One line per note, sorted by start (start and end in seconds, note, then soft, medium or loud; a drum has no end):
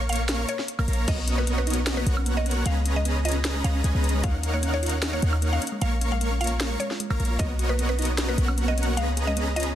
0.00 0.45 A#1 loud
0.00 0.47 A#3 medium
0.00 0.47 A#4 medium
0.00 0.47 C#5 medium
0.00 0.47 F5 medium
0.00 0.47 C#6 loud
0.09 0.39 F5 medium
0.09 closed hi-hat soft
0.13 closed hi-hat medium
0.16 closed hi-hat medium
0.29 snare loud
0.29 closed hi-hat medium
0.49 0.71 C#5 medium
0.49 closed hi-hat medium
0.59 snare soft
0.68 closed hi-hat medium
0.79 0.86 A#1 medium
0.79 0.86 A#3 medium
0.79 0.86 A#4 medium
0.79 0.86 C#5 medium
0.79 0.86 F5 medium
0.79 0.86 A#5 medium
0.79 high woodblock medium
0.88 1.06 A#1 loud
0.88 1.06 A#3 medium
0.88 1.06 A#4 medium
0.88 1.06 C#5 medium
0.88 1.06 F5 medium
0.88 1.06 A#5 medium
0.88 closed hi-hat soft
0.93 closed hi-hat medium
1.08 2.05 B1 loud
1.08 1.13 A#3 medium
1.08 2.04 B3 medium
1.08 2.04 F#4 medium
1.08 2.04 A#4 medium
1.08 2.04 C#5 medium
1.08 2.04 D#5 loud
1.08 1.30 D#5 loud
1.08 kick loud
1.08 closed hi-hat medium
1.08 crash medium
1.18 1.23 B3 loud
1.27 1.31 C#4 medium
1.27 closed hi-hat medium
1.38 1.43 A#3 loud
1.38 1.53 B4 medium
1.47 1.55 B3 loud
1.47 closed hi-hat medium
1.58 1.62 C#4 medium
1.58 1.87 B4 loud
1.67 1.75 D#4 loud
1.67 closed hi-hat soft
1.70 closed hi-hat medium
1.73 closed hi-hat medium
1.77 1.82 B3 medium
1.87 1.92 C#4 loud
1.87 snare loud
1.87 closed hi-hat medium
1.97 2.02 A#3 loud
1.97 2.26 B4 medium
2.06 2.64 B1 medium
2.06 2.10 A#3 medium
2.06 2.63 B3 loud
2.06 2.63 F#4 medium
2.06 2.64 A#4 medium
2.06 2.64 C#5 medium
2.06 2.64 F#5 loud
2.06 closed hi-hat medium
2.17 2.22 C#4 loud
2.17 high woodblock medium
2.26 2.31 A#3 medium
2.26 closed hi-hat medium
2.37 2.41 B3 medium
2.37 2.59 D#5 loud
2.46 2.49 C#4 medium
2.46 closed hi-hat medium
2.51 closed hi-hat medium
2.56 2.61 A#3 loud
2.66 3.63 C#2 loud
2.66 2.71 G#3 medium
2.66 3.63 C#4 medium
2.66 3.63 G#4 medium
2.66 3.63 B4 medium
2.66 3.63 D#5 medium
2.66 2.88 F5 loud
2.66 3.63 A#5 loud
2.66 closed hi-hat medium
2.76 2.81 B3 loud
2.85 2.89 C#4 medium
2.85 closed hi-hat medium
2.96 3.01 G#3 loud
2.96 3.18 D#5 medium
3.05 3.13 B3 loud
3.05 closed hi-hat medium
3.16 3.20 C#4 medium
3.25 3.33 F4 loud
3.25 3.55 D#5 medium
3.25 closed hi-hat medium
3.29 closed hi-hat medium
3.32 3.40 B3 medium
3.32 closed hi-hat medium
3.45 3.50 C#4 loud
3.45 snare loud
3.45 closed hi-hat medium
3.55 3.60 G#3 loud
3.64 3.82 C#2 medium
3.64 3.68 G#3 medium
3.64 3.82 C#4 loud
3.64 3.82 G#4 medium
3.64 3.82 B4 medium
3.64 3.82 D#5 medium
3.64 3.87 F5 medium
3.64 3.82 A#5 loud
3.64 closed hi-hat medium
3.75 3.80 C#4 loud
3.84 3.93 C#2 loud
3.84 3.89 G#3 medium
3.84 3.92 C#4 medium
3.84 3.92 G#4 medium
3.84 3.92 B4 medium
3.84 3.92 D#5 medium
3.84 3.92 G#5 loud
3.84 closed hi-hat medium
3.95 4.25 C#2 medium
3.95 3.99 B3 medium
3.95 4.22 C#4 medium
3.95 4.22 G#4 medium
3.95 4.22 B4 medium
3.95 4.22 D#5 medium
3.95 4.22 A#5 medium
4.04 4.07 C#4 medium
4.04 closed hi-hat medium
4.09 closed hi-hat medium
4.14 4.19 G#3 loud
4.24 5.21 D#2 loud
4.24 4.29 A#3 medium
4.24 5.20 D#4 loud
4.24 5.20 A#4 medium
4.24 5.20 C#5 medium
4.24 4.46 F5 loud
4.24 5.20 F5 medium
4.24 5.20 F#5 loud
4.24 kick loud
4.24 closed hi-hat medium
4.34 4.39 C#4 loud
4.43 4.46 D#4 medium
4.43 closed hi-hat medium
4.54 4.58 A#3 loud
4.54 4.68 C#5 medium
4.63 4.71 C#4 loud
4.63 closed hi-hat medium
4.74 4.78 D#4 medium
4.74 5.02 C#5 loud
4.83 4.91 F4 loud
4.83 closed hi-hat medium
4.86 closed hi-hat medium
4.89 4.98 C#4 medium
4.89 closed hi-hat medium
5.02 5.08 D#4 medium
5.02 snare loud
5.02 closed hi-hat medium
5.13 5.18 A#3 loud
5.13 5.42 C#5 loud
5.22 5.59 D#2 medium
5.22 5.25 A#3 medium
5.22 5.61 D#4 medium
5.22 5.61 A#4 medium
5.22 5.61 C#5 medium
5.22 5.61 F5 medium
5.22 5.61 F#5 loud
5.22 closed hi-hat medium
5.33 5.37 D#4 loud
5.33 high woodblock medium
5.42 5.47 A#3 medium
5.42 closed hi-hat medium
5.52 5.57 C#4 medium
5.52 5.75 F5 loud
5.62 5.65 C#4 medium
5.62 closed hi-hat medium
5.67 closed hi-hat medium
5.72 5.77 G#3 loud
5.81 6.77 A#1 loud
5.81 5.87 G#3 medium
5.81 6.78 A#3 medium
5.81 6.78 A#4 medium
5.81 6.78 C#5 medium
5.81 6.78 F5 medium
5.81 6.04 F5 loud
5.81 6.78 C#6 loud
5.81 closed hi-hat medium
5.92 5.97 A#3 loud
6.01 6.04 C#4 medium
6.01 closed hi-hat medium
6.11 6.16 G#3 loud
6.11 6.34 F5 medium
6.21 6.29 A#3 loud
6.21 closed hi-hat medium
6.31 6.36 C#4 medium
6.41 6.48 F4 loud
6.41 6.71 F5 loud
6.41 closed hi-hat soft
6.44 closed hi-hat medium
6.47 6.56 A#3 medium
6.47 closed hi-hat medium
6.60 6.66 C#4 loud
6.60 snare loud
6.60 closed hi-hat medium
6.71 6.76 G#3 loud
6.80 6.83 G#3 loud
6.80 7.02 C#5 loud
6.80 closed hi-hat medium
6.91 6.95 F4 loud
6.91 snare soft
7.00 7.05 G#3 medium
7.00 closed hi-hat medium
7.10 7.18 A#1 loud
7.10 7.17 A#3 medium
7.10 7.13 F4 medium
7.10 7.17 A#4 medium
7.10 7.17 C#5 medium
7.10 7.17 F5 medium
7.10 7.17 A#5 medium
7.10 high woodblock medium
7.20 7.38 A#1 loud
7.20 7.27 G#3 medium
7.20 7.37 A#3 medium
7.20 7.37 A#4 medium
7.20 7.37 C#5 medium
7.20 7.37 F5 medium
7.20 7.37 A#5 medium
7.20 closed hi-hat soft
7.25 closed hi-hat medium
7.30 7.33 F4 medium
7.39 8.36 B1 loud
7.39 7.45 A#3 medium
7.39 8.36 B3 loud
7.39 8.36 F#4 medium
7.39 8.36 A#4 medium
7.39 8.36 C#5 medium
7.39 7.61 D#5 loud
7.39 8.36 D#5 loud
7.39 kick loud
7.39 closed hi-hat medium
7.50 7.55 B3 loud
7.59 7.64 F#4 medium
7.59 closed hi-hat medium
7.69 7.74 A#3 loud
7.69 7.84 B4 medium
7.79 7.87 B3 loud
7.79 closed hi-hat medium
7.89 7.94 C#4 medium
7.89 8.18 B4 loud
7.99 8.07 D#4 loud
7.99 closed hi-hat soft
8.02 closed hi-hat medium
8.05 closed hi-hat medium
8.09 8.14 B3 medium
8.18 8.24 C#4 loud
8.18 snare loud
8.18 closed hi-hat medium
8.28 8.34 A#3 loud
8.28 8.58 B4 loud
8.38 8.99 B1 medium
8.38 8.41 A#3 medium
8.38 8.95 B3 medium
8.38 8.95 F#4 medium
8.38 8.95 A#4 medium
8.38 8.95 C#5 medium
8.38 8.95 F#5 medium
8.38 closed hi-hat medium
8.48 8.53 C#4 loud
8.48 high woodblock medium
8.58 8.63 A#3 medium
8.58 closed hi-hat medium
8.68 8.73 B3 medium
8.68 8.90 D#5 loud
8.78 8.81 C#4 medium
8.78 closed hi-hat soft
8.83 closed hi-hat medium
8.88 8.93 A#3 loud
8.97 9.75 C#2 loud
8.97 9.03 G#3 medium
8.97 9.75 C#4 medium
8.97 9.75 G#4 medium
8.97 9.75 B4 medium
8.97 9.75 D#5 medium
8.97 9.19 F5 loud
8.97 9.75 A#5 loud
8.97 closed hi-hat medium
9.08 9.12 B3 loud
9.17 9.22 G#4 medium
9.17 closed hi-hat medium
9.27 9.32 G#3 loud
9.27 9.49 D#5 loud
9.37 9.45 B3 loud
9.37 closed hi-hat medium
9.47 9.52 C#4 medium
9.56 9.64 F4 loud
9.56 9.75 D#5 medium
9.56 closed hi-hat soft
9.60 closed hi-hat medium
9.63 9.71 B3 medium
9.63 closed hi-hat medium